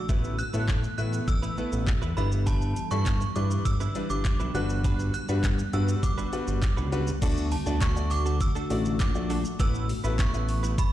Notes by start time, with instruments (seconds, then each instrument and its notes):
Already playing: synth bell E6
0.09 analog synth bass A1, ambient pad E3 B3 A4, clean electric guitar A3 B3 E4 B4, grand piano A3 B3 E4 B4, kick, shaker
0.24 shaker
0.39 synth bell F#6, shaker
0.53 analog synth bass A2, grand piano A3 B3 E4 A4, clean electric guitar A3 B3 E4 B4, shaker
0.69 kick, clap, shaker
0.83 muted clean electric guitar stroke, shaker
0.98 analog synth bass A2, grand piano A3 B3 E4 B4, synth bell F#6, shaker
1.13 muted clean electric guitar stroke, shaker
1.28 analog synth bass A1, synth bell E6, muted clean electric guitar stroke, kick, shaker
1.42 clean electric guitar A3 B3 E4 B4, shaker
1.57 clean electric guitar A3 B3 E4 B4, grand piano A3 B3 E4 B4, shaker
1.72 analog synth bass A1, shaker
1.87 muted clean electric guitar stroke, kick, clap, shaker
2.02 analog synth bass E2, clean electric guitar A3 B3 E4 B4, shaker
2.16 analog synth bass G1, ambient pad E3 G3 D4, clean electric guitar G3 D4 E4 B4, grand piano G3 D4 E4 B4, synth bell B5, shaker
2.32 shaker
2.46 clean electric guitar G3 D4 E4 B4, synth bell A5, kick, closed hi-hat, shaker
2.62 shaker
2.76 muted clean electric guitar stroke, closed hi-hat, shaker
2.91 analog synth bass G2, grand piano G3 D4 E4 A4, clean electric guitar G3 D4 E4 B4, synth bell C#6, shaker
3.06 muted clean electric guitar stroke, kick, clap, closed hi-hat, shaker
3.21 muted clean electric guitar stroke, shaker
3.36 analog synth bass G2, grand piano G3 D4 E4 B4, synth bell D6, closed hi-hat, shaker
3.50 muted clean electric guitar stroke, shaker
3.65 analog synth bass G1, synth bell E6, muted clean electric guitar stroke, kick, closed hi-hat, shaker
3.80 clean electric guitar G3 D4 E4 B4, shaker
3.95 clean electric guitar G3 D4 E4 B4, grand piano G3 D4 E4 B4, closed hi-hat, shaker
4.10 analog synth bass G1, synth bell D6, shaker
4.25 muted clean electric guitar stroke, kick, clap, closed hi-hat, shaker
4.40 analog synth bass B1, clean electric guitar G3 D4 E4 B4, shaker
4.54 analog synth bass G1, clean electric guitar G3 D4 F#4 B4, grand piano G3 D4 F#4 B4, ambient pad B3 F#4, synth bell F#6, closed hi-hat, shaker
4.70 shaker
4.84 clean electric guitar G3 D4 F#4 B4, kick, closed hi-hat, shaker
4.99 shaker
5.14 synth bell F#6, muted clean electric guitar stroke, closed hi-hat, shaker
5.29 analog synth bass G2, grand piano G3 D4 F#4 B4, clean electric guitar G3 D4 F#4 B4, shaker
5.44 kick, clap, closed hi-hat, shaker
5.58 muted clean electric guitar stroke, shaker
5.73 analog synth bass G2, grand piano G3 D4 F#4 B4, synth bell E6, closed hi-hat, shaker
5.88 muted clean electric guitar stroke, shaker
6.03 analog synth bass G1, synth bell D6, muted clean electric guitar stroke, kick, closed hi-hat, shaker
6.18 clean electric guitar G3 D4 F#4 B4, shaker
6.33 grand piano G3 D4 F#4 B4, muted clean electric guitar stroke, closed hi-hat, shaker
6.47 analog synth bass G1, muted clean electric guitar stroke, shaker
6.62 muted clean electric guitar stroke, kick, clap, closed hi-hat, shaker
6.77 analog synth bass C#2, clean electric guitar G3 D4 F#4 B4, shaker
6.92 clean electric guitar G3 D4 F#4 B4, grand piano G3 D4 F#4 B4, closed hi-hat, shaker
7.07 muted clean electric guitar stroke, shaker
7.22 analog synth bass D2, ambient pad D3 A3 F#4, grand piano A3 D4 F#4 D5, clean electric guitar A3 D4 F#4 A4, kick, closed hi-hat, crash, shaker
7.37 shaker
7.52 synth bell A5, open hi-hat, shaker
7.66 analog synth bass D2, grand piano A3 D4 F#4 D5, clean electric guitar A3 D4 F#4 A4, shaker
7.81 clean electric guitar A3 D4 F#4 A4, synth bell C#6, kick, clap, closed hi-hat, shaker
7.96 grand piano A3 D4 F#4 D5, muted clean electric guitar stroke, shaker
8.11 synth bell D6, muted clean electric guitar stroke, clap, open hi-hat, shaker
8.26 clean electric guitar A3 D4 F#4 A4, shaker
8.41 synth bell E6, kick, closed hi-hat, shaker
8.55 clean electric guitar A3 D4 F#4 A4, shaker
8.70 analog synth bass A1, grand piano A3 D4 F#4 D5, muted clean electric guitar stroke, open hi-hat, shaker
8.85 muted clean electric guitar stroke, shaker
9.00 analog synth bass A#1, synth bell D6, muted clean electric guitar stroke, kick, clap, closed hi-hat, shaker
9.15 grand piano A3 D4 F#4 D5, muted clean electric guitar stroke, shaker
9.30 clean electric guitar A3 D4 F#4 A4, open hi-hat, shaker
9.44 muted clean electric guitar stroke, shaker
9.59 analog synth bass A1, ambient pad E3 B3 A4, clean electric guitar A3 B3 E4 B4, grand piano A3 B3 E4 B4, synth bell E6, kick, closed hi-hat, shaker
9.75 shaker
9.89 open hi-hat, shaker
10.04 analog synth bass A1, grand piano A3 B3 E4 B4, clean electric guitar A3 B3 E4 B4, shaker
10.19 clean electric guitar A3 B3 E4 B4, synth bell C#6, kick, clap, closed hi-hat, shaker
10.34 grand piano A3 B3 E4 B4, muted clean electric guitar stroke, shaker
10.48 muted clean electric guitar stroke, open hi-hat, shaker
10.63 clean electric guitar A3 B3 E4 B4, shaker
10.78 synth bell B5, muted clean electric guitar stroke, kick, closed hi-hat, shaker